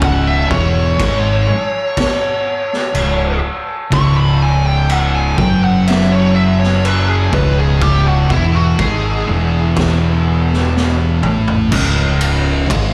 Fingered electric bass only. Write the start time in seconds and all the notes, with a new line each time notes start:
Already playing: C#1
0.51 E1
1.00 G#1
2.94 C#1
3.92 C#1
5.38 F#1
7.33 C#1
8.30 E1
8.79 G#1
9.28 E1
11.24 A1
11.72 C#1
12.70 G#1